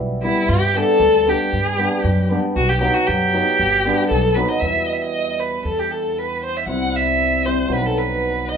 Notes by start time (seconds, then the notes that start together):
Already playing: B1 G3
0.23 G3 B3 E4
0.49 G2 G4
0.74 G3 B3 D4 A4
1.00 D2
1.26 G3 B3 D4 G4
1.53 G2
1.77 G3 B3 D4
2.04 F#2
2.29 G3 B3 D4
2.56 B1 F#4
2.69 G4
2.80 F#3 B3 D#4 G4
2.95 F#4
3.07 F#2 G4
3.33 F#3 B3 D#4
3.59 G1
3.85 G3 B3 D4
4.09 B1 A4
4.35 F#3 B3 D#4 B4
4.49 D#5
4.60 E2 G3 B3 E5
4.64 E4
4.86 D#5
4.93 E5
5.02 D#5
5.40 B4
5.65 E2 A4
5.79 G4
5.91 A4
6.19 B4
6.45 C5
6.57 E5
6.66 C2 G3 C4 E4 F#5
6.96 E5
7.45 G3 C4 E4 C5
7.68 B1 F#3 B3
7.72 D#4 B4
7.86 A4
7.98 B4
8.49 D#5